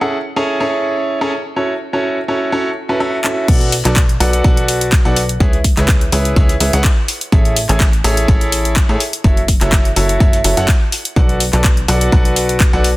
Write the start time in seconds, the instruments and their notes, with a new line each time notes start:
0.01 grand piano C#4 E4 G#4 A4 F#5
0.36 grand piano C#4 E4 G#4 A4 C#5
0.60 grand piano C#4 E4 G#4 A4 C#5
1.21 grand piano C#4 E4 G#4 A4 C#5
1.56 grand piano C#4 E4 F#4 A4 C#5
1.93 grand piano C#4 E4 F#4 A4 C#5
2.28 grand piano C#4 E4 F#4 A4 C#5
2.52 grand piano C#4 E4 F#4 A4 C#5
2.89 grand piano C#4 E4 F#4 A4 B4
3.00 grand piano C#4 E4 F#4 A4 E5
3.24 grand piano C#4 E4 F#4 A4 E5, clap
3.48 analog synth bass B1, grand piano F#4 A4 B4 D5 F#5, kick, closed hi-hat, crash
3.61 closed hi-hat
3.72 closed hi-hat, open hi-hat
3.85 analog synth bass B1, grand piano F#4 A4 B4 D5 A5, clap, closed hi-hat
3.96 kick, snare, clap, closed hi-hat
4.09 closed hi-hat
4.20 analog synth bass B1, grand piano F#4 A4 B4 D5 F#5, snare, closed hi-hat, open hi-hat
4.33 closed hi-hat
4.44 analog synth bass B1, grand piano F#4 A4 B4 D5 F#5, kick, closed hi-hat
4.57 closed hi-hat
4.68 closed hi-hat, open hi-hat
4.81 closed hi-hat
4.92 kick, snare, clap, closed hi-hat
5.05 analog synth bass B1, grand piano F#4 A4 B4 D5 F#5, closed hi-hat
5.16 closed hi-hat, open hi-hat
5.29 closed hi-hat
5.40 analog synth bass C#2, grand piano E4 G#4 B4 C#5 E5, kick, closed hi-hat
5.53 closed hi-hat
5.64 kick, closed hi-hat, open hi-hat
5.77 analog synth bass C#2, grand piano E4 G#4 B4 C#5 E5, snare, clap, closed hi-hat
5.88 kick, snare, clap, closed hi-hat
6.01 closed hi-hat
6.12 analog synth bass C#2, grand piano E4 G#4 B4 C#5 E5, closed hi-hat, open hi-hat
6.25 closed hi-hat
6.36 analog synth bass C#2, grand piano E4 G#4 B4 C#5 E5, kick, closed hi-hat
6.49 closed hi-hat
6.60 analog synth bass C#2, grand piano E4 G#4 B4 C#5 E5, closed hi-hat, open hi-hat
6.73 analog synth bass C#2, grand piano E4 G#4 B4 C#5 F#5, snare, closed hi-hat
6.84 kick, snare, clap, open hi-hat
7.08 closed hi-hat, open hi-hat
7.21 closed hi-hat
7.32 analog synth bass A1, grand piano E4 G#4 A4 C#5 E5, kick, closed hi-hat
7.45 closed hi-hat
7.56 closed hi-hat, open hi-hat
7.69 analog synth bass A1, grand piano E4 G#4 A4 C#5 G#5, clap, closed hi-hat
7.80 kick, snare, clap, closed hi-hat
7.93 closed hi-hat
8.04 analog synth bass A1, grand piano E4 G#4 A4 C#5 E5, snare, closed hi-hat, open hi-hat
8.17 closed hi-hat
8.28 analog synth bass A1, grand piano E4 G#4 A4 C#5 E5, kick, closed hi-hat
8.41 closed hi-hat
8.52 closed hi-hat, open hi-hat
8.65 closed hi-hat
8.76 kick, snare, clap, closed hi-hat
8.89 analog synth bass A2, grand piano E4 G#4 A4 C#5 E5, closed hi-hat
9.00 closed hi-hat, open hi-hat
9.13 closed hi-hat
9.24 analog synth bass F#1, grand piano E4 F#4 A4 C#5 E5, kick, closed hi-hat
9.37 closed hi-hat
9.48 kick, closed hi-hat, open hi-hat
9.61 analog synth bass F#1, grand piano E4 F#4 A4 C#5 E5, snare, clap, closed hi-hat
9.72 kick, snare, clap, closed hi-hat
9.85 closed hi-hat
9.96 analog synth bass F#1, grand piano E4 F#4 A4 C#5 E5, closed hi-hat, open hi-hat
10.09 closed hi-hat
10.20 analog synth bass F#1, grand piano E4 F#4 A4 C#5 E5, kick, closed hi-hat
10.33 closed hi-hat
10.44 analog synth bass F#1, grand piano E4 F#4 A4 C#5 E5, closed hi-hat, open hi-hat
10.57 analog synth bass F#1, grand piano E4 F#4 A4 C#5 F#5, snare, closed hi-hat
10.68 kick, snare, clap, open hi-hat
10.92 closed hi-hat, open hi-hat
11.05 closed hi-hat
11.16 analog synth bass B1, grand piano F#4 A4 B4 D5 F#5, kick, closed hi-hat
11.29 closed hi-hat
11.40 closed hi-hat, open hi-hat
11.53 analog synth bass B1, grand piano F#4 A4 B4 D5 A5, clap, closed hi-hat
11.64 kick, snare, clap, closed hi-hat
11.77 closed hi-hat
11.88 analog synth bass B1, grand piano F#4 A4 B4 D5 F#5, snare, closed hi-hat, open hi-hat
12.01 closed hi-hat
12.12 analog synth bass B1, grand piano F#4 A4 B4 D5 F#5, kick, closed hi-hat
12.25 closed hi-hat
12.36 closed hi-hat, open hi-hat
12.49 closed hi-hat
12.60 kick, snare, clap, closed hi-hat
12.73 analog synth bass B1, grand piano F#4 A4 B4 D5 F#5, closed hi-hat
12.84 closed hi-hat, open hi-hat